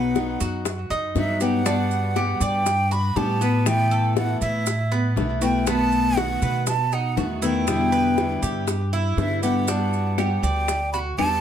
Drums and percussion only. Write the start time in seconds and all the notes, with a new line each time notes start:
0.15 high bongo, maracas
0.40 high bongo, maracas
0.65 high bongo, maracas
0.91 high bongo, maracas
1.16 high bongo, low bongo, maracas
1.40 high bongo, maracas
1.66 high bongo, maracas
1.91 maracas
2.16 high bongo, maracas
2.41 high bongo, maracas
2.66 high bongo, maracas
2.91 high bongo, maracas
3.16 high bongo, low bongo, maracas
3.41 high bongo, maracas
3.66 high bongo, maracas
3.91 maracas
4.17 high bongo, maracas
4.42 high bongo, maracas
4.66 high bongo, maracas
4.92 high bongo, maracas
5.17 high bongo, low bongo, maracas
5.41 high bongo, maracas
5.67 high bongo, maracas
5.92 maracas
6.17 high bongo, maracas
6.42 high bongo, maracas
6.67 high bongo, maracas
6.92 high bongo, maracas
7.17 high bongo, low bongo, maracas
7.42 high bongo, maracas
7.67 high bongo, maracas
7.93 maracas
8.18 high bongo, maracas
8.43 high bongo, maracas
8.67 high bongo, maracas
8.93 high bongo, maracas
9.18 high bongo, low bongo, maracas
9.43 high bongo, maracas
9.68 high bongo, maracas
9.93 maracas
10.18 high bongo, claves, maracas
10.43 high bongo, maracas
10.68 high bongo, maracas
10.94 high bongo, maracas
11.19 high bongo, low bongo, claves, maracas